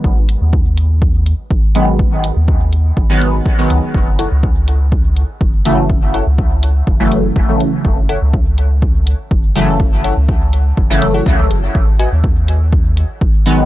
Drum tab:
HH |-x-x-x-x|-x-x-x-x|-x-x-x-x|-x-x-x-x|
BD |o-o-o-o-|o-o-o-o-|o-o-o-o-|o-o-o-o-|

HH |-x-x-x-x|-x-x-x-x|-x-x-x-x|
BD |o-o-o-o-|o-o-o-o-|o-o-o-o-|